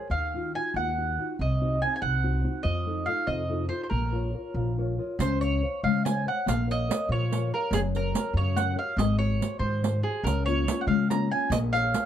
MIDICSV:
0, 0, Header, 1, 5, 480
1, 0, Start_track
1, 0, Key_signature, -5, "minor"
1, 0, Tempo, 422238
1, 127, Time_signature, 6, 3, 24, 8
1, 5906, Key_signature, -5, "major"
1, 13704, End_track
2, 0, Start_track
2, 0, Title_t, "Mandolin"
2, 0, Program_c, 0, 25
2, 126, Note_on_c, 0, 77, 77
2, 583, Note_off_c, 0, 77, 0
2, 628, Note_on_c, 0, 80, 81
2, 846, Note_off_c, 0, 80, 0
2, 869, Note_on_c, 0, 78, 76
2, 1544, Note_off_c, 0, 78, 0
2, 1607, Note_on_c, 0, 75, 75
2, 2047, Note_off_c, 0, 75, 0
2, 2068, Note_on_c, 0, 80, 78
2, 2213, Note_off_c, 0, 80, 0
2, 2226, Note_on_c, 0, 80, 61
2, 2289, Note_off_c, 0, 80, 0
2, 2294, Note_on_c, 0, 78, 82
2, 2967, Note_off_c, 0, 78, 0
2, 2990, Note_on_c, 0, 75, 82
2, 3478, Note_on_c, 0, 77, 77
2, 3499, Note_off_c, 0, 75, 0
2, 3717, Note_on_c, 0, 75, 72
2, 3729, Note_off_c, 0, 77, 0
2, 4171, Note_off_c, 0, 75, 0
2, 4193, Note_on_c, 0, 72, 81
2, 4346, Note_off_c, 0, 72, 0
2, 4359, Note_on_c, 0, 72, 49
2, 4425, Note_off_c, 0, 72, 0
2, 4430, Note_on_c, 0, 70, 67
2, 5373, Note_off_c, 0, 70, 0
2, 5916, Note_on_c, 0, 72, 86
2, 6146, Note_off_c, 0, 72, 0
2, 6151, Note_on_c, 0, 73, 72
2, 6595, Note_off_c, 0, 73, 0
2, 6638, Note_on_c, 0, 77, 79
2, 6866, Note_off_c, 0, 77, 0
2, 6880, Note_on_c, 0, 80, 70
2, 7100, Note_off_c, 0, 80, 0
2, 7140, Note_on_c, 0, 78, 76
2, 7349, Note_off_c, 0, 78, 0
2, 7377, Note_on_c, 0, 77, 81
2, 7595, Note_off_c, 0, 77, 0
2, 7630, Note_on_c, 0, 75, 97
2, 8051, Note_off_c, 0, 75, 0
2, 8094, Note_on_c, 0, 73, 76
2, 8565, Note_off_c, 0, 73, 0
2, 8570, Note_on_c, 0, 70, 75
2, 8795, Note_on_c, 0, 68, 89
2, 8798, Note_off_c, 0, 70, 0
2, 8859, Note_off_c, 0, 68, 0
2, 9052, Note_on_c, 0, 70, 82
2, 9473, Note_off_c, 0, 70, 0
2, 9517, Note_on_c, 0, 73, 84
2, 9737, Note_on_c, 0, 78, 86
2, 9755, Note_off_c, 0, 73, 0
2, 9954, Note_off_c, 0, 78, 0
2, 9989, Note_on_c, 0, 77, 76
2, 10199, Note_off_c, 0, 77, 0
2, 10212, Note_on_c, 0, 75, 93
2, 10438, Note_off_c, 0, 75, 0
2, 10443, Note_on_c, 0, 73, 89
2, 10889, Note_off_c, 0, 73, 0
2, 10906, Note_on_c, 0, 72, 74
2, 11369, Note_off_c, 0, 72, 0
2, 11407, Note_on_c, 0, 68, 73
2, 11632, Note_off_c, 0, 68, 0
2, 11643, Note_on_c, 0, 70, 80
2, 11879, Note_off_c, 0, 70, 0
2, 11888, Note_on_c, 0, 73, 86
2, 12279, Note_off_c, 0, 73, 0
2, 12291, Note_on_c, 0, 78, 64
2, 12360, Note_off_c, 0, 78, 0
2, 12364, Note_on_c, 0, 77, 81
2, 12598, Note_off_c, 0, 77, 0
2, 12622, Note_on_c, 0, 82, 75
2, 12840, Note_off_c, 0, 82, 0
2, 12863, Note_on_c, 0, 80, 84
2, 13079, Note_off_c, 0, 80, 0
2, 13093, Note_on_c, 0, 75, 94
2, 13159, Note_off_c, 0, 75, 0
2, 13331, Note_on_c, 0, 77, 98
2, 13704, Note_off_c, 0, 77, 0
2, 13704, End_track
3, 0, Start_track
3, 0, Title_t, "Nylon-string guitar"
3, 0, Program_c, 1, 24
3, 143, Note_on_c, 1, 51, 52
3, 385, Note_on_c, 1, 63, 43
3, 394, Note_on_c, 1, 65, 42
3, 396, Note_on_c, 1, 66, 45
3, 609, Note_off_c, 1, 63, 0
3, 612, Note_off_c, 1, 51, 0
3, 620, Note_off_c, 1, 65, 0
3, 623, Note_on_c, 1, 63, 38
3, 628, Note_off_c, 1, 66, 0
3, 634, Note_on_c, 1, 65, 35
3, 642, Note_on_c, 1, 66, 43
3, 875, Note_on_c, 1, 58, 51
3, 1013, Note_off_c, 1, 63, 0
3, 1019, Note_off_c, 1, 65, 0
3, 1024, Note_off_c, 1, 66, 0
3, 1109, Note_on_c, 1, 63, 40
3, 1118, Note_on_c, 1, 66, 44
3, 1332, Note_off_c, 1, 63, 0
3, 1340, Note_off_c, 1, 58, 0
3, 1341, Note_off_c, 1, 66, 0
3, 1344, Note_on_c, 1, 63, 41
3, 1352, Note_on_c, 1, 65, 34
3, 1354, Note_on_c, 1, 66, 41
3, 1536, Note_off_c, 1, 63, 0
3, 1539, Note_off_c, 1, 65, 0
3, 1542, Note_off_c, 1, 66, 0
3, 1590, Note_on_c, 1, 48, 55
3, 1829, Note_on_c, 1, 60, 44
3, 1830, Note_on_c, 1, 63, 37
3, 1838, Note_on_c, 1, 66, 52
3, 2057, Note_off_c, 1, 48, 0
3, 2057, Note_off_c, 1, 63, 0
3, 2061, Note_off_c, 1, 60, 0
3, 2062, Note_off_c, 1, 66, 0
3, 2073, Note_on_c, 1, 63, 37
3, 2074, Note_on_c, 1, 60, 45
3, 2076, Note_on_c, 1, 66, 47
3, 2306, Note_on_c, 1, 48, 52
3, 2454, Note_off_c, 1, 63, 0
3, 2456, Note_off_c, 1, 60, 0
3, 2457, Note_off_c, 1, 66, 0
3, 2538, Note_on_c, 1, 63, 37
3, 2541, Note_on_c, 1, 60, 39
3, 2546, Note_on_c, 1, 66, 55
3, 2761, Note_off_c, 1, 60, 0
3, 2761, Note_off_c, 1, 63, 0
3, 2766, Note_off_c, 1, 66, 0
3, 2770, Note_off_c, 1, 48, 0
3, 2773, Note_on_c, 1, 60, 38
3, 2779, Note_on_c, 1, 63, 40
3, 2780, Note_on_c, 1, 66, 41
3, 2966, Note_off_c, 1, 60, 0
3, 2966, Note_off_c, 1, 63, 0
3, 2969, Note_off_c, 1, 66, 0
3, 3000, Note_on_c, 1, 53, 56
3, 3250, Note_on_c, 1, 63, 48
3, 3256, Note_on_c, 1, 65, 42
3, 3257, Note_on_c, 1, 69, 50
3, 3474, Note_off_c, 1, 53, 0
3, 3475, Note_off_c, 1, 63, 0
3, 3482, Note_off_c, 1, 69, 0
3, 3487, Note_off_c, 1, 65, 0
3, 3488, Note_on_c, 1, 63, 42
3, 3498, Note_on_c, 1, 65, 37
3, 3499, Note_on_c, 1, 69, 40
3, 3714, Note_on_c, 1, 48, 65
3, 3876, Note_off_c, 1, 63, 0
3, 3881, Note_off_c, 1, 69, 0
3, 3883, Note_off_c, 1, 65, 0
3, 3969, Note_on_c, 1, 63, 44
3, 3974, Note_on_c, 1, 65, 40
3, 3977, Note_on_c, 1, 69, 45
3, 4174, Note_off_c, 1, 63, 0
3, 4178, Note_off_c, 1, 65, 0
3, 4185, Note_off_c, 1, 69, 0
3, 4186, Note_on_c, 1, 63, 35
3, 4189, Note_off_c, 1, 48, 0
3, 4195, Note_on_c, 1, 65, 41
3, 4198, Note_on_c, 1, 69, 41
3, 4386, Note_off_c, 1, 63, 0
3, 4389, Note_off_c, 1, 65, 0
3, 4393, Note_off_c, 1, 69, 0
3, 4438, Note_on_c, 1, 58, 50
3, 4684, Note_on_c, 1, 65, 48
3, 4693, Note_on_c, 1, 73, 47
3, 4694, Note_on_c, 1, 70, 39
3, 4916, Note_off_c, 1, 58, 0
3, 4920, Note_off_c, 1, 65, 0
3, 4926, Note_off_c, 1, 73, 0
3, 4927, Note_off_c, 1, 70, 0
3, 4934, Note_on_c, 1, 65, 38
3, 4939, Note_on_c, 1, 70, 34
3, 4942, Note_on_c, 1, 73, 39
3, 5177, Note_on_c, 1, 53, 58
3, 5329, Note_off_c, 1, 65, 0
3, 5332, Note_off_c, 1, 73, 0
3, 5333, Note_off_c, 1, 70, 0
3, 5430, Note_on_c, 1, 65, 41
3, 5441, Note_on_c, 1, 70, 37
3, 5442, Note_on_c, 1, 73, 56
3, 5445, Note_off_c, 1, 73, 0
3, 5445, Note_on_c, 1, 73, 42
3, 5653, Note_off_c, 1, 53, 0
3, 5654, Note_off_c, 1, 65, 0
3, 5654, Note_off_c, 1, 70, 0
3, 5659, Note_off_c, 1, 73, 0
3, 5666, Note_on_c, 1, 65, 41
3, 5668, Note_on_c, 1, 70, 30
3, 5669, Note_on_c, 1, 75, 47
3, 5673, Note_on_c, 1, 73, 42
3, 5858, Note_off_c, 1, 65, 0
3, 5858, Note_off_c, 1, 70, 0
3, 5861, Note_off_c, 1, 73, 0
3, 5889, Note_off_c, 1, 75, 0
3, 5913, Note_on_c, 1, 61, 48
3, 6157, Note_on_c, 1, 68, 48
3, 6159, Note_on_c, 1, 73, 40
3, 6168, Note_on_c, 1, 77, 50
3, 6381, Note_off_c, 1, 61, 0
3, 6385, Note_off_c, 1, 77, 0
3, 6388, Note_off_c, 1, 73, 0
3, 6390, Note_off_c, 1, 68, 0
3, 6394, Note_on_c, 1, 72, 40
3, 6401, Note_on_c, 1, 73, 37
3, 6402, Note_on_c, 1, 77, 44
3, 6642, Note_on_c, 1, 56, 55
3, 6784, Note_off_c, 1, 72, 0
3, 6785, Note_off_c, 1, 77, 0
3, 6787, Note_off_c, 1, 73, 0
3, 6884, Note_on_c, 1, 72, 49
3, 6890, Note_on_c, 1, 73, 41
3, 6897, Note_on_c, 1, 77, 53
3, 7101, Note_off_c, 1, 72, 0
3, 7104, Note_off_c, 1, 73, 0
3, 7107, Note_off_c, 1, 56, 0
3, 7111, Note_off_c, 1, 77, 0
3, 7112, Note_on_c, 1, 72, 42
3, 7124, Note_on_c, 1, 77, 45
3, 7304, Note_off_c, 1, 72, 0
3, 7310, Note_off_c, 1, 77, 0
3, 7344, Note_on_c, 1, 58, 65
3, 7586, Note_on_c, 1, 70, 50
3, 7594, Note_on_c, 1, 73, 39
3, 7601, Note_on_c, 1, 77, 55
3, 7814, Note_off_c, 1, 58, 0
3, 7815, Note_off_c, 1, 70, 0
3, 7819, Note_off_c, 1, 73, 0
3, 7827, Note_off_c, 1, 77, 0
3, 7828, Note_on_c, 1, 70, 42
3, 7835, Note_on_c, 1, 73, 44
3, 7841, Note_on_c, 1, 77, 51
3, 8069, Note_on_c, 1, 53, 66
3, 8213, Note_off_c, 1, 70, 0
3, 8215, Note_off_c, 1, 73, 0
3, 8220, Note_off_c, 1, 77, 0
3, 8317, Note_on_c, 1, 70, 49
3, 8323, Note_on_c, 1, 73, 44
3, 8329, Note_on_c, 1, 77, 49
3, 8532, Note_off_c, 1, 53, 0
3, 8546, Note_off_c, 1, 70, 0
3, 8550, Note_off_c, 1, 73, 0
3, 8555, Note_off_c, 1, 77, 0
3, 8565, Note_on_c, 1, 73, 41
3, 8569, Note_on_c, 1, 77, 46
3, 8743, Note_off_c, 1, 73, 0
3, 8746, Note_off_c, 1, 77, 0
3, 8795, Note_on_c, 1, 54, 60
3, 9029, Note_on_c, 1, 66, 48
3, 9033, Note_on_c, 1, 70, 50
3, 9041, Note_on_c, 1, 73, 63
3, 9242, Note_off_c, 1, 66, 0
3, 9246, Note_off_c, 1, 70, 0
3, 9251, Note_off_c, 1, 54, 0
3, 9255, Note_on_c, 1, 66, 42
3, 9259, Note_off_c, 1, 73, 0
3, 9260, Note_on_c, 1, 70, 39
3, 9273, Note_on_c, 1, 73, 51
3, 9509, Note_on_c, 1, 49, 66
3, 9638, Note_off_c, 1, 66, 0
3, 9641, Note_off_c, 1, 70, 0
3, 9649, Note_off_c, 1, 73, 0
3, 9726, Note_on_c, 1, 70, 49
3, 9727, Note_on_c, 1, 66, 45
3, 9732, Note_on_c, 1, 73, 58
3, 9942, Note_off_c, 1, 66, 0
3, 9944, Note_off_c, 1, 70, 0
3, 9944, Note_off_c, 1, 73, 0
3, 9954, Note_on_c, 1, 66, 49
3, 9959, Note_on_c, 1, 70, 34
3, 9961, Note_on_c, 1, 73, 49
3, 9965, Note_off_c, 1, 49, 0
3, 10149, Note_off_c, 1, 66, 0
3, 10151, Note_off_c, 1, 70, 0
3, 10151, Note_off_c, 1, 73, 0
3, 10214, Note_on_c, 1, 56, 60
3, 10444, Note_on_c, 1, 66, 47
3, 10453, Note_on_c, 1, 68, 40
3, 10456, Note_on_c, 1, 75, 52
3, 10669, Note_off_c, 1, 66, 0
3, 10677, Note_off_c, 1, 68, 0
3, 10680, Note_off_c, 1, 56, 0
3, 10683, Note_on_c, 1, 66, 45
3, 10689, Note_on_c, 1, 68, 37
3, 10692, Note_off_c, 1, 75, 0
3, 10696, Note_on_c, 1, 72, 44
3, 10930, Note_on_c, 1, 51, 61
3, 11075, Note_off_c, 1, 66, 0
3, 11080, Note_off_c, 1, 68, 0
3, 11081, Note_off_c, 1, 72, 0
3, 11163, Note_on_c, 1, 66, 45
3, 11174, Note_on_c, 1, 68, 36
3, 11175, Note_on_c, 1, 72, 46
3, 11389, Note_off_c, 1, 66, 0
3, 11393, Note_off_c, 1, 72, 0
3, 11396, Note_off_c, 1, 68, 0
3, 11401, Note_off_c, 1, 51, 0
3, 11402, Note_on_c, 1, 66, 39
3, 11409, Note_on_c, 1, 68, 32
3, 11409, Note_on_c, 1, 72, 43
3, 11598, Note_off_c, 1, 66, 0
3, 11600, Note_off_c, 1, 72, 0
3, 11602, Note_off_c, 1, 68, 0
3, 11656, Note_on_c, 1, 49, 60
3, 11896, Note_on_c, 1, 58, 45
3, 11904, Note_on_c, 1, 61, 42
3, 11909, Note_on_c, 1, 65, 56
3, 12125, Note_off_c, 1, 49, 0
3, 12132, Note_off_c, 1, 58, 0
3, 12136, Note_off_c, 1, 61, 0
3, 12144, Note_off_c, 1, 65, 0
3, 12144, Note_on_c, 1, 58, 35
3, 12152, Note_on_c, 1, 61, 39
3, 12158, Note_on_c, 1, 65, 44
3, 12370, Note_on_c, 1, 56, 61
3, 12528, Note_off_c, 1, 58, 0
3, 12531, Note_off_c, 1, 61, 0
3, 12536, Note_off_c, 1, 65, 0
3, 12619, Note_on_c, 1, 58, 52
3, 12622, Note_on_c, 1, 61, 36
3, 12636, Note_on_c, 1, 65, 43
3, 12839, Note_off_c, 1, 56, 0
3, 12847, Note_off_c, 1, 58, 0
3, 12852, Note_off_c, 1, 61, 0
3, 12861, Note_off_c, 1, 65, 0
3, 12861, Note_on_c, 1, 58, 40
3, 12866, Note_on_c, 1, 61, 41
3, 12875, Note_on_c, 1, 65, 45
3, 13047, Note_off_c, 1, 58, 0
3, 13050, Note_off_c, 1, 61, 0
3, 13056, Note_off_c, 1, 65, 0
3, 13092, Note_on_c, 1, 58, 56
3, 13340, Note_on_c, 1, 68, 52
3, 13343, Note_on_c, 1, 70, 42
3, 13347, Note_on_c, 1, 73, 57
3, 13558, Note_off_c, 1, 58, 0
3, 13568, Note_off_c, 1, 68, 0
3, 13578, Note_off_c, 1, 70, 0
3, 13582, Note_on_c, 1, 68, 40
3, 13585, Note_off_c, 1, 73, 0
3, 13591, Note_on_c, 1, 70, 36
3, 13599, Note_on_c, 1, 73, 42
3, 13704, Note_off_c, 1, 68, 0
3, 13704, Note_off_c, 1, 70, 0
3, 13704, Note_off_c, 1, 73, 0
3, 13704, End_track
4, 0, Start_track
4, 0, Title_t, "Upright bass"
4, 0, Program_c, 2, 32
4, 111, Note_on_c, 2, 39, 82
4, 591, Note_off_c, 2, 39, 0
4, 842, Note_on_c, 2, 39, 84
4, 1319, Note_off_c, 2, 39, 0
4, 1582, Note_on_c, 2, 36, 80
4, 2050, Note_off_c, 2, 36, 0
4, 2297, Note_on_c, 2, 36, 88
4, 2763, Note_off_c, 2, 36, 0
4, 3008, Note_on_c, 2, 41, 87
4, 3476, Note_off_c, 2, 41, 0
4, 3724, Note_on_c, 2, 41, 93
4, 4193, Note_off_c, 2, 41, 0
4, 4444, Note_on_c, 2, 34, 88
4, 4918, Note_off_c, 2, 34, 0
4, 5165, Note_on_c, 2, 34, 84
4, 5643, Note_off_c, 2, 34, 0
4, 5897, Note_on_c, 2, 37, 105
4, 6371, Note_off_c, 2, 37, 0
4, 6633, Note_on_c, 2, 49, 92
4, 7101, Note_off_c, 2, 49, 0
4, 7354, Note_on_c, 2, 34, 90
4, 7818, Note_off_c, 2, 34, 0
4, 8059, Note_on_c, 2, 46, 84
4, 8524, Note_off_c, 2, 46, 0
4, 8762, Note_on_c, 2, 30, 92
4, 9230, Note_off_c, 2, 30, 0
4, 9476, Note_on_c, 2, 42, 91
4, 9946, Note_off_c, 2, 42, 0
4, 10193, Note_on_c, 2, 32, 97
4, 10666, Note_off_c, 2, 32, 0
4, 10906, Note_on_c, 2, 44, 84
4, 11384, Note_off_c, 2, 44, 0
4, 11635, Note_on_c, 2, 37, 96
4, 12109, Note_off_c, 2, 37, 0
4, 12355, Note_on_c, 2, 49, 89
4, 12827, Note_off_c, 2, 49, 0
4, 13073, Note_on_c, 2, 34, 103
4, 13543, Note_off_c, 2, 34, 0
4, 13704, End_track
5, 0, Start_track
5, 0, Title_t, "Riq"
5, 5912, Note_on_c, 9, 54, 54
5, 6026, Note_off_c, 9, 54, 0
5, 6161, Note_on_c, 9, 54, 17
5, 6275, Note_off_c, 9, 54, 0
5, 6888, Note_on_c, 9, 54, 55
5, 7002, Note_off_c, 9, 54, 0
5, 7369, Note_on_c, 9, 54, 64
5, 7483, Note_off_c, 9, 54, 0
5, 7627, Note_on_c, 9, 54, 20
5, 7740, Note_off_c, 9, 54, 0
5, 7854, Note_on_c, 9, 54, 68
5, 7968, Note_off_c, 9, 54, 0
5, 8326, Note_on_c, 9, 54, 49
5, 8440, Note_off_c, 9, 54, 0
5, 8786, Note_on_c, 9, 54, 60
5, 8900, Note_off_c, 9, 54, 0
5, 9037, Note_on_c, 9, 54, 21
5, 9150, Note_off_c, 9, 54, 0
5, 9268, Note_on_c, 9, 54, 64
5, 9381, Note_off_c, 9, 54, 0
5, 9744, Note_on_c, 9, 54, 48
5, 9858, Note_off_c, 9, 54, 0
5, 10221, Note_on_c, 9, 54, 61
5, 10335, Note_off_c, 9, 54, 0
5, 10711, Note_on_c, 9, 54, 49
5, 10824, Note_off_c, 9, 54, 0
5, 11186, Note_on_c, 9, 54, 53
5, 11299, Note_off_c, 9, 54, 0
5, 11670, Note_on_c, 9, 54, 54
5, 11784, Note_off_c, 9, 54, 0
5, 11907, Note_on_c, 9, 54, 18
5, 12020, Note_off_c, 9, 54, 0
5, 12142, Note_on_c, 9, 54, 62
5, 12256, Note_off_c, 9, 54, 0
5, 12629, Note_on_c, 9, 54, 54
5, 12742, Note_off_c, 9, 54, 0
5, 13096, Note_on_c, 9, 54, 69
5, 13209, Note_off_c, 9, 54, 0
5, 13352, Note_on_c, 9, 54, 19
5, 13466, Note_off_c, 9, 54, 0
5, 13577, Note_on_c, 9, 54, 58
5, 13691, Note_off_c, 9, 54, 0
5, 13704, End_track
0, 0, End_of_file